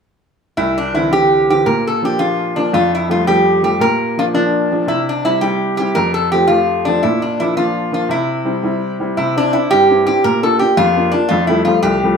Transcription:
0.57 C2 E4
0.78 D4
0.94 D3 E3 C4 E4
1.11 D3 E3 C4 G4
1.49 D3 E3 C4 G4
1.66 A#2 A#4
1.87 A4
2.02 F3 A#3 D4 G4
2.19 F3 A#3 D4 F4
2.56 F3 A#3 D4
2.73 F2 F4
2.95 E4
3.09 F3 G3 A3 F4
3.27 F3 G3 A3 G4
3.63 F3 G3 A3 G4
3.80 A#2 A#4
4.18 F3 A#3 D4 F4
4.34 F3 A#3 D4
4.71 F3 A#3 D4
4.87 C3 E4
5.09 D4
5.24 G3 C4 E4
5.41 G3 C4 E4 G4
5.77 G3 C4 E4 G4
5.95 F2 A#4
6.14 A4
6.32 F3 A3 C4 G4
6.47 F3 A3 C4 F4
6.85 F3 A3 C4 D4
7.03 A#2 E4
7.22 D4
7.40 F3 A#3 D4 E4
7.57 F3 A#3 D4 F4
7.92 F3 A#3 D4 F4
8.09 C3 E4
8.45 G3 C4 E4
8.63 G3 C4 E4
9.00 G3 C4 E4
9.17 C3 E4
9.36 C4 D4 E4
9.53 C4 D4 E4
9.71 G2 G4
9.90 C4 D4 E4
10.07 C4 D4 E4 G4
10.24 A#2 A#4
10.43 A#3 D4 F4 A4
10.59 A#3 D4 F4 G4
10.77 F2 F4
10.96 A#3 D4 F4
11.12 A#3 D4 F4
11.29 F2 F4
11.47 F3 G3 A3 E4
11.65 F3 G3 A3 F4
11.83 C2 G4
12.03 F3 G3 A3

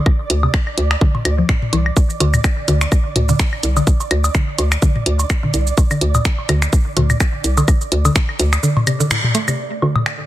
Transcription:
Already playing: D5
0.06 kick, high woodblock
0.30 D2, closed hi-hat
0.43 C3, high woodblock
0.54 finger snap, kick, low woodblock
0.67 high woodblock
0.78 D2, closed hi-hat
0.91 finger snap, high woodblock
1.01 D3, kick
1.15 mid tom, low woodblock
1.25 D2, closed hi-hat, high woodblock
1.38 F3
1.49 A2, finger snap, kick
1.62 mid tom
1.73 C2 E3, closed hi-hat, low woodblock
1.86 high woodblock
1.97 kick, shaker
2.10 shaker
2.20 D2 D3, closed hi-hat, low woodblock
2.34 mid tom, high woodblock, shaker
2.44 finger snap, kick, shaker
2.68 D2 D3, closed hi-hat, shaker
2.81 finger snap, low woodblock, shaker
2.92 kick, high woodblock, shaker
3.16 D2, closed hi-hat, mid tom
3.29 D3, mid tom, shaker
3.39 finger snap, kick, low woodblock, shaker
3.53 high woodblock
3.63 C2, closed hi-hat, shaker
3.76 D3, high woodblock, shaker
3.87 kick, shaker
4.00 low woodblock, shaker
4.11 D2, closed hi-hat, high woodblock
4.24 high woodblock, shaker
4.35 D3, finger snap, kick, shaker
4.58 D2, closed hi-hat, low woodblock, shaker
4.72 finger snap, high woodblock, shaker
4.82 D3, kick, shaker
4.96 mid tom
5.06 D2, closed hi-hat
5.19 low woodblock, shaker
5.30 finger snap, kick, high woodblock, shaker
5.43 D3, mid tom
5.54 C2, closed hi-hat, shaker
5.67 shaker
5.78 kick, low woodblock, shaker
5.91 D3, high woodblock, shaker
6.01 D2, closed hi-hat
6.15 mid tom, high woodblock, shaker
6.25 finger snap, kick, shaker
6.39 low woodblock
6.49 D2 D3, closed hi-hat, high woodblock, shaker
6.62 finger snap, shaker
6.73 kick, shaker
6.97 D2 D3, closed hi-hat, mid tom, low woodblock
7.10 mid tom, high woodblock, shaker
7.20 finger snap, kick, shaker
7.44 C2, closed hi-hat, shaker
7.57 D3, high woodblock, low woodblock, shaker
7.68 kick, high woodblock, shaker
7.81 shaker
7.92 D2, closed hi-hat
8.05 D3, high woodblock, shaker
8.16 finger snap, kick, low woodblock, shaker
8.29 high woodblock
8.39 D2, closed hi-hat, shaker
8.53 finger snap, high woodblock, shaker
8.63 D3, shaker
8.77 mid tom, low woodblock
8.87 C3, closed hi-hat, high woodblock, shaker
9.00 D3, shaker
9.11 A2, finger snap, shaker
9.24 mid tom
9.35 A3, closed hi-hat, low woodblock, shaker
9.48 C3, high woodblock, shaker
9.59 D4
9.82 D2 D3 F5, low woodblock
9.89 A4
9.96 mid tom, high woodblock
10.06 finger snap

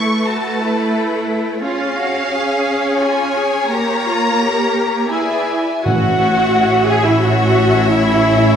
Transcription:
Already playing: A3 E4 A4 B4 C#6
0.27 F#4 A5
0.61 E4
1.63 C#4 F4 G#4 C#5 F5
1.98 F#4
2.32 G#4
3.00 F4 G#5
3.35 G#4
3.69 A#3 G4 A#4 A#5
4.06 F4
4.40 G4
5.11 E4 G#4 B4 D5 E5 G#5
5.85 A1 A2 C#4 E4 F#4 C#5 E5 F#5
6.89 G#4 G#5
7.06 E4 E5
7.23 F#4 F#5
7.91 E4 E5

